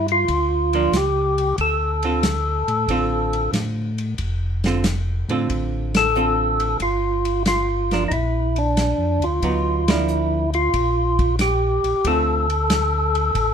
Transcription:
Already playing: tonewheel organ G2
0.08 tonewheel organ F4, ride
0.28 tonewheel organ D2, kick, ride
0.73 hollow-body jazz guitar F3 A#3 D4, ride
0.92 tonewheel organ C#2, snare, hi-hat pedal, ride
0.97 tonewheel organ G4
1.38 ride
1.58 tonewheel organ D2 A4, kick, ride
2.03 hollow-body jazz guitar D3 C4 F4 A4, ride
2.23 snare, hi-hat pedal, ride
2.68 tonewheel organ A2, ride
2.88 tonewheel organ A1, hollow-body jazz guitar D3 C4 F4 A4, kick, ride
3.33 ride
3.53 tonewheel organ A2, snare, hi-hat pedal, ride
3.98 ride
4.18 tonewheel organ F1, kick, ride
4.64 hollow-body jazz guitar D3 C4 F4 A4, snare, ride
4.84 snare, hi-hat pedal, ride
5.29 tonewheel organ A2, hollow-body jazz guitar D3 C4 F4 A4, ride
5.50 tonewheel organ A1, kick, ride
5.95 tonewheel organ A4, snare, ride
6.15 hollow-body jazz guitar D3 C4 F4 A4, hi-hat pedal
6.60 ride
6.80 tonewheel organ G1 F4, kick, ride
7.25 ride
7.46 tonewheel organ F4, snare, hi-hat pedal, ride
7.91 hollow-body jazz guitar F3 A#3 D4, snare, ride
8.08 tonewheel organ A#1 D#4, kick, ride
8.13 tonewheel organ E4
8.56 tonewheel organ D4, ride
8.77 snare, hi-hat pedal, ride
8.98 tonewheel organ F2
9.20 tonewheel organ D2 F4, ride
9.42 tonewheel organ D2, hollow-body jazz guitar F#3 B3 D#4, kick, ride
9.88 hollow-body jazz guitar F3 A#3 D4, tonewheel organ E4, snare, ride
10.08 hi-hat pedal
10.54 tonewheel organ F4, ride
10.73 tonewheel organ A#1, kick, ride
11.19 kick, ride
11.39 tonewheel organ G4, snare, hi-hat pedal, ride
11.84 tonewheel organ A#1, ride
12.04 tonewheel organ D2 A4, hollow-body jazz guitar D3 A3 C4 F4, kick, ride
12.50 ride
12.70 snare, hi-hat pedal, ride
13.15 ride
13.35 tonewheel organ A1, kick, ride

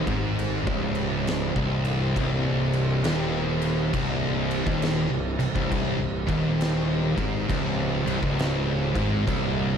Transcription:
Already playing: glass harmonica C4 G4 C5
0.07 fingered electric bass G#1, distorted electric guitar G#2, kick, crash
0.39 crash
0.67 fingered electric bass C#1, distorted electric guitar C#2, kick
0.95 crash
1.27 snare, crash
1.56 fingered electric bass C1, distorted electric guitar C2, kick
1.85 crash
2.16 fingered electric bass C1, distorted electric guitar C2, kick, crash
2.73 crash
3.04 fingered electric bass D#1, distorted electric guitar D#2, snare, crash
3.62 crash
3.93 fingered electric bass C1, distorted electric guitar C2, kick, crash
4.51 crash
4.66 fingered electric bass D#1, distorted electric guitar D#2, kick
4.82 snare, crash
5.11 fingered electric bass C1, distorted electric guitar C2
5.39 fingered electric bass C1, distorted electric guitar C2, crash
5.55 fingered electric bass C1, distorted electric guitar C2, kick
5.72 kick, crash
6.00 fingered electric bass C1, distorted electric guitar C2
6.28 fingered electric bass D#1, distorted electric guitar D#2, kick, crash
6.61 snare, crash
7.17 fingered electric bass G#1, distorted electric guitar G#2, kick, crash
7.50 fingered electric bass C#1, distorted electric guitar C#2, kick, crash
8.05 fingered electric bass C1, distorted electric guitar C2, crash
8.22 fingered electric bass C#1, distorted electric guitar C#2, kick
8.39 snare, crash
8.95 fingered electric bass G#1, distorted electric guitar G#2, kick, crash
9.27 fingered electric bass C1, distorted electric guitar C2, kick, crash

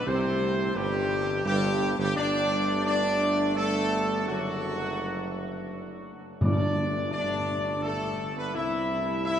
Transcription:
0.06 tuba C2, trombone section C3, french horn section C4, trumpet section C5
0.75 tuba G1, trombone section G2, french horn section G3, trumpet section G4
1.45 tuba G1, trombone section G2, french horn section G3, trumpet section G4
1.98 tuba G1, trombone section G2, french horn section G3, trumpet section G4
2.16 tuba G1, trombone section D3 A3, french horn section D4, trumpet section D5
2.85 french horn section D4, trumpet section D5
3.55 french horn section A3, trumpet section A4
4.26 tuba F#1, french horn section F#3, trumpet section F#4
6.41 tuba G1, timpani G2, trombone section D3 A3, french horn section D4, trumpet section D5
7.12 french horn section D4, trumpet section D5
7.82 french horn section A3, trumpet section A4
8.36 french horn section B3, trumpet section B4
8.54 tuba C2, trombone section C3 E4, french horn section E4, trumpet section E5
9.25 french horn section E4, trumpet section E5

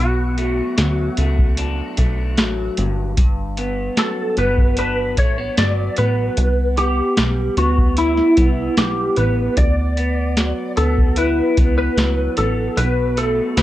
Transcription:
Already playing: clean electric guitar B2 F#3 B3, electric slide guitar F#4
0.00 analog synth bass B1
0.38 clean electric guitar A3, closed hi-hat
0.77 analog synth bass D2, clean electric guitar F#3, snare, closed hi-hat
1.17 analog synth bass C#2, clean electric guitar A3, closed hi-hat
1.39 kick
1.57 clean electric guitar D4, closed hi-hat
1.97 analog synth bass B1, clean electric guitar A3, kick, closed hi-hat
2.37 analog synth bass A1, clean electric guitar F#3, snare, closed hi-hat
2.77 analog synth bass G1, clean electric guitar G2, closed hi-hat
3.17 clean electric guitar G2, kick, closed hi-hat
3.57 clean electric guitar B3, closed hi-hat
3.97 clean electric guitar F#3, electric slide guitar A4, snare, closed hi-hat
4.37 analog synth bass G1, clean electric guitar B3, electric slide guitar B4, closed hi-hat
4.58 kick
4.77 clean electric guitar D4, electric slide guitar B4, closed hi-hat
5.17 analog synth bass A1, clean electric guitar A3, electric slide guitar C#5, kick, closed hi-hat
5.38 clean electric guitar B3
5.57 analog synth bass G1, clean electric guitar F#3, electric slide guitar D5, snare, closed hi-hat
5.96 analog synth bass A1, clean electric guitar B3, electric slide guitar B4, closed hi-hat
6.37 analog synth bass C2, closed hi-hat
6.77 clean electric guitar B3, electric slide guitar G4, closed hi-hat
7.17 analog synth bass B1, clean electric guitar G3, snare, closed hi-hat
7.57 analog synth bass D2, clean electric guitar B3, electric slide guitar F#4, closed hi-hat
7.78 kick
7.97 electric slide guitar E4, clean electric guitar E4, closed hi-hat
8.17 snare
8.37 analog synth bass C2, clean electric guitar B3, kick, closed hi-hat
8.77 analog synth bass B1, clean electric guitar G3, electric slide guitar G4, snare, closed hi-hat
9.16 analog synth bass A1, clean electric guitar B3, electric slide guitar B4, closed hi-hat
9.57 analog synth bass D2, electric slide guitar D5, kick, closed hi-hat
9.97 clean electric guitar B3, closed hi-hat
10.37 clean electric guitar F#3, snare, closed hi-hat
10.77 analog synth bass D2, clean electric guitar B3, electric slide guitar A4, closed hi-hat
10.98 kick
11.16 clean electric guitar E4, electric slide guitar B4, closed hi-hat
11.57 analog synth bass C#2, clean electric guitar B3, kick, closed hi-hat
11.78 electric slide guitar B4
11.97 analog synth bass C#2, clean electric guitar F#3, snare, closed hi-hat
12.37 analog synth bass A1, clean electric guitar B3, electric slide guitar A4, closed hi-hat
12.77 analog synth bass B1, clean electric guitar B2, electric slide guitar B4, closed hi-hat
13.17 clean electric guitar A3, electric slide guitar A4, closed hi-hat
13.57 analog synth bass D2, clean electric guitar F#3, electric slide guitar B4, snare, closed hi-hat

